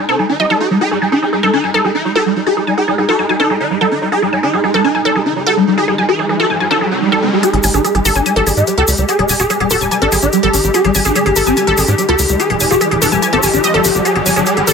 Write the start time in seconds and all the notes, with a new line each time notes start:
Already playing: D#4
0.09 C#4 A4
0.19 G#3 G#5
0.29 D#4
0.40 G#3 D#5
0.50 G#3 A4
0.60 G4
0.71 G#3
0.81 G#4
0.91 G#3 G#4
1.02 G#3 G#5
1.12 D#4 G#4
1.22 G#3 G#4
1.33 G#3 G#4
1.43 G#3 A4
1.53 D#4 G#5
1.64 G#3 G#5
1.74 G#3 A4
1.84 G#3 G#4
1.95 E4
2.05 G#3
2.15 G#4 A4
2.26 G#3
2.36 G#3
2.46 G#4
2.57 G#3 G#4
2.67 G#3 G#5
2.78 G#4
2.88 G#3 G#4
2.98 G#3 G#4
3.09 G4 A4
3.19 G#3 G#5
3.29 G#3 G#5
3.40 D#4 A4
3.50 G#3 G#4
3.60 D#4
3.71 G#3
3.81 G#3 A4
3.91 D#4
4.02 G#3
4.12 G#4, riser
4.22 G#3 G#4
4.33 G#3 G#5
4.43 D#4 G#4
4.53 G#3 G#4
4.64 G#3 G#4
4.74 G#3 A4
4.85 D#4 G#5
4.95 G#3 G#5
5.05 G#3 A4
5.16 G#3 G#4
5.26 E4
5.36 G#3
5.47 G#4 A4
5.57 G#3
5.67 G#3
5.78 G#4
5.88 G#3 G#4
5.98 G#3 G#5
6.09 G#4
6.19 G#3 G#4
6.29 G#3 G#4
6.40 G4 A4
6.50 G#3 G#5
6.60 G#3 G#5
6.71 E4 A4
6.81 G#3 G#4
6.91 C#4
7.02 G#3
7.12 G#3 A4
7.22 C#4
7.33 G#3
7.43 G4 G#4, closed hi-hat, riser, shaker
7.53 G#1 G#3 G#4, closed hi-hat
7.63 G#1 G#3 G#5, open hi-hat, shaker
7.74 G#1 D#4 G#4, closed hi-hat, shaker
7.84 G#3 G#4, closed hi-hat, shaker
7.95 G#1 G#3 G#4, closed hi-hat
8.05 G#1 G#3 A4, open hi-hat, shaker
8.15 G#1 D#4 G#5, closed hi-hat, shaker
8.26 G#3 G#5, closed hi-hat, shaker
8.36 G#1 G#3 A4, closed hi-hat
8.47 G#1 G#3 G#4, open hi-hat, shaker
8.57 G#2 E4, closed hi-hat, shaker
8.67 G#3, closed hi-hat, shaker
8.78 C#2 G#4 A4, closed hi-hat
8.88 C#2 G#3, open hi-hat, shaker
8.97 C#2 G#3, closed hi-hat, shaker
9.09 G#4, closed hi-hat, shaker
9.19 D#1 G#3 G#4, closed hi-hat
9.29 D#1 G#3 G#5, open hi-hat, shaker
9.39 D#1 G#4, closed hi-hat, shaker
9.50 G#3 G#4, closed hi-hat, shaker
9.60 D#1 G#3 G#4, closed hi-hat
9.70 D#1 G4 A4, open hi-hat, shaker
9.81 D#1 G#3 G#5, closed hi-hat, shaker
9.91 G#3 G#5, closed hi-hat, shaker
10.02 G#1 D#4 A4, closed hi-hat
10.12 G#1 G#3 G#4, open hi-hat, shaker
10.22 G#1 D#4, closed hi-hat, shaker
10.33 G#3, closed hi-hat, shaker
10.43 G#1 G#3 A4, closed hi-hat
10.53 G#1 D#4, open hi-hat, shaker
10.64 G#1 G#3, closed hi-hat, shaker
10.74 G4 G#4, closed hi-hat, shaker
10.84 G#1 G#3 G#4, closed hi-hat
10.95 G#1 G#3 G#5, open hi-hat, shaker
11.05 G#1 D#4 G#4, closed hi-hat, shaker
11.15 G#3 G#4, closed hi-hat, shaker
11.26 G#1 G#3 G#4, closed hi-hat
11.36 G#1 G#3 A4, open hi-hat, shaker
11.46 G#1 C#4 G#5, closed hi-hat, shaker
11.57 G#3 G#5, closed hi-hat, shaker
11.67 G#1 G#3 A4, closed hi-hat
11.77 G#1 G#3 G#4, open hi-hat, shaker
11.88 G#2 D#4, closed hi-hat, shaker
11.98 G#3, closed hi-hat, shaker
12.09 C#2 G4 A4, closed hi-hat
12.19 C#2 G#3, open hi-hat, shaker
12.29 C#2 G#3, closed hi-hat, shaker
12.40 G#4, closed hi-hat, shaker
12.50 D#1 G#3 G#4, closed hi-hat
12.60 D#1 G#3 G#5, open hi-hat, shaker
12.71 D#1 G4 G#4, closed hi-hat, shaker
12.81 G#3 G#4, closed hi-hat, shaker
12.91 D#1 G#3 G#4, closed hi-hat
13.02 D#1 D#4 A4, open hi-hat, shaker
13.12 D#1 G#3 G#5, closed hi-hat, shaker
13.22 G#3 G#5, closed hi-hat, shaker
13.33 G#1 C#4 A4, closed hi-hat
13.43 G#1 G#3 G#5, open hi-hat, shaker
13.53 G#1 D#4, closed hi-hat, shaker
13.64 G#3 D#5, closed hi-hat, shaker
13.74 G#1 G#3 A4, closed hi-hat
13.84 G#1 G4, open hi-hat, shaker
13.95 G#1 G#3, closed hi-hat, shaker
14.05 G#4, closed hi-hat, shaker
14.15 G#1 G#3 G#4, closed hi-hat
14.26 G#1 G#3 G#5, open hi-hat, shaker
14.36 G#1 D#4 G#4, closed hi-hat, shaker
14.46 G#3 G#4, closed hi-hat, shaker
14.57 G#1 G#3 G#4, closed hi-hat
14.67 G#1 G#3 A4, open hi-hat, shaker